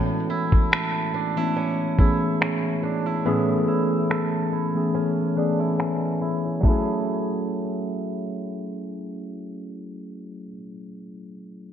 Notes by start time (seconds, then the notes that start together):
Already playing: A2 E3 G#3 A3 B3 C#4 E4 F#4 A4 A5
0.30 E4
0.52 kick
0.72 A4, finger snap
1.14 D4
1.37 E3 A3 B3 C#4 E4
1.56 C#4
1.98 E3 A3 B3 C#4 E4 G#4, kick
2.41 C#4, finger snap
2.83 D4
3.06 E4
3.25 A2 E3 A3 B3 C#4 G#4
3.68 E4
4.10 A4, finger snap
4.52 E4
4.74 E3 A3 B3 C#4 G#4
4.95 C#4
5.36 E3 A3 B3 C#4 D4 G#4
5.59 E4
5.79 C#4 B4 G#5, finger snap
6.21 E4 G#4 E5
6.45 E4 C#5
6.59 F#3 A3
6.63 A3 C#4 E4, kick, crash
6.67 E4 G#4